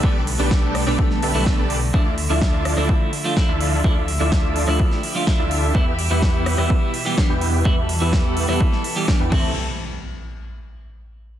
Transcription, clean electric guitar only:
\new Staff \with { instrumentName = "Clean electric guitar" } { \time 4/4 \key d \dorian \tempo 4 = 126 <b, g a b d'>16 r8 <b, g a b d'>4 <b, g a b d'>8. r16 <b, g a b e'>16 <b, g b d'>16 r8. | <f a d' e'>16 r8 <f a d' e''>4 <f a d' e'>8. r16 <f a d' f'>16 <a d' e'>16 r8. | <f a d' e'>16 r8 <f a d' e''>4 <f a d' e'>8. r16 <f a d' f'>16 e'16 r8. | <e g b e'>16 r8 <e g b e'>4 <e g b e'>8. r16 <e g b g'>16 <e g b d'>16 r8. |
<e g b e'>16 r8 <e g b e'>4 <e g b e'>8. r16 <e g b g'>16 <e d'>16 r16 <e a c' e'>8 | r1 | }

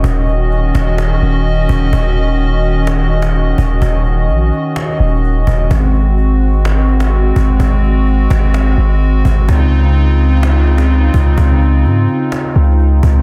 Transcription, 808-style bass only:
\new Staff \with { instrumentName = "808-style bass" } { \clef bass \time 4/4 \key aes \mixolydian \tempo 4 = 127 ees,,4. ees,,4 ees,,4 ees,,8 | ees,,2.~ ees,,8 ees,,8 | ees,,4 bes,,8 r4 ees,,4 ees,,8 | aes,,2.~ aes,,8 aes,,8 |
aes,,4. aes,,4 aes,,4 aes,,8 | des,2.~ des,8 des,8 | des,4 aes,8 r4 des,4 des,8 | }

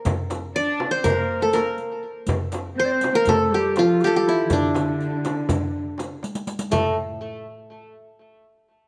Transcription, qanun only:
\new Staff \with { instrumentName = "Qanun" } { \time 9/8 \tempo 4. = 81 r4 d''8. c''16 bes'8. a'16 bes'8 r4 | r4 c''8. bes'16 a'8 g'8 f'8 g'32 a'32 g'16 e'8 | d'2.~ d'8 r4 | a8 r1 | }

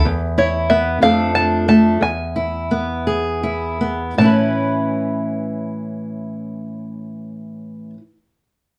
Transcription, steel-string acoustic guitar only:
\new Staff \with { instrumentName = "Steel-string acoustic guitar" } { \time 6/8 \key a \major \tempo 4. = 52 << { r8 e'8 b8 <f a d' a'>8 d'8 a8 | r8 e'8 b8 gis'8 e'8 b8 | <e cis' e' b'>2.~ | <e cis' e' b'>2. | } \\ { e,4. f,4. | e,2. | a,2.~ | a,2. | } >> }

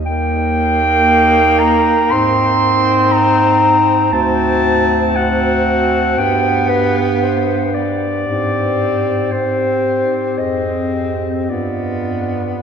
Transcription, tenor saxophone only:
\new Staff \with { instrumentName = "Tenor saxophone" } { \time 4/4 \key aes \lydian \tempo 4 = 58 bes2 c'2 | c'4 c'4 b4.~ b16 r16 | c'4 c'4 c'4 b4 | }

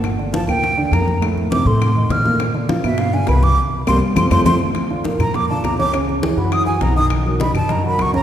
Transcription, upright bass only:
\new Staff \with { instrumentName = "Upright bass" } { \clef bass \time 4/4 \key f \mixolydian \tempo 4 = 204 g,,4. d,4. f,4~ | f,4. a,4. bes,4~ | bes,4. g,4. c,4 | r4 c,8 r8 f,8 f,8 f,8 r8 |
r4. f,4. des,4~ | des,4. ges,4. b,,4~ | b,,4. fis,4. des,4 | }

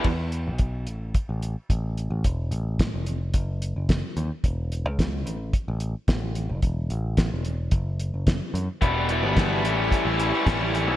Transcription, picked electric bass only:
\new Staff \with { instrumentName = "Picked electric bass" } { \clef bass \time 4/4 \key e \dorian \tempo 4 = 110 e,8. b,,8. a,,8 r16 a,,8 r16 a,,8. a,,16 | e,,8 a,,8. f,,8. fis,,8. fis,,8 r16 dis,16 r16 | e,,8. cis,8. a,,8 r16 a,,8 r16 a,,8. fis,,16 | e,,8 a,,8. e,,8. fis,,8. fis,,8 r16 fis,16 r16 |
e,,8. g,,8. a,,8 r16 a,,8 r16 a,,8. b,,16 | }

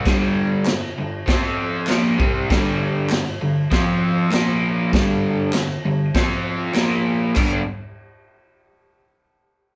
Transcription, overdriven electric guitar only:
\new Staff \with { instrumentName = "Overdriven electric guitar" } { \clef bass \time 4/4 \key f \lydian \tempo 4 = 98 <g, d g>4 <g, d>8 <g, d>8 <f c' f'>4 <bes, f bes>8 <c g c'>8 | <g, d g>4 <g, d>8 <g, d>8 <f c' f'>4 <bes, f bes>4 | <g, d g>4 <g, d>8 <g, d>8 <f c' f'>4 <bes, f bes>4 | <g, d g b d'>8 r2. r8 | }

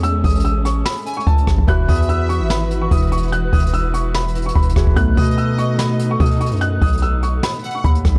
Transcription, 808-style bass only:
\new Staff \with { instrumentName = "808-style bass" } { \clef bass \time 4/4 \key e \major \tempo 4 = 146 e,8 a,,4. r4 cis,8 a,,16 a,,16 | e,,8 e,4~ e,16 gis,,4~ gis,,16 e,,4~ | e,,8 e,,2~ e,,8 e,,8 e,,16 e,,16 | b,,8 b,2~ b,8 b,8. fis,16~ |
fis,8 b,,4. r4 dis,8 b,,16 r16 | }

